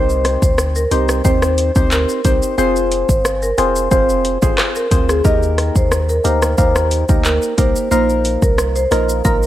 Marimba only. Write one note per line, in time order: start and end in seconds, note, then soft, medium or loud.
0.00 0.20 C5 loud
0.43 0.56 C5 medium
0.76 0.89 A#4 medium
0.92 1.07 C5 medium
1.25 1.73 C5 medium
1.92 2.06 A#4 medium
2.25 2.40 C5 medium
2.58 2.86 C5 loud
3.09 3.22 C5 medium
3.43 3.56 A#4 medium
3.58 3.73 C5 medium
3.92 4.39 C5 loud
4.76 4.89 A#4 medium
5.09 5.23 G#4 medium
5.25 5.53 D#5 loud
5.76 5.89 C5 medium
6.09 6.23 A#4 medium
6.25 6.40 C5 medium
6.58 7.06 C5 loud
7.25 7.40 A#4 medium
7.58 7.73 C5 medium
7.91 8.20 C5 loud
8.42 8.56 A#4 medium
8.76 8.89 C5 medium
8.92 9.07 A#4 medium
9.25 9.47 A#4 loud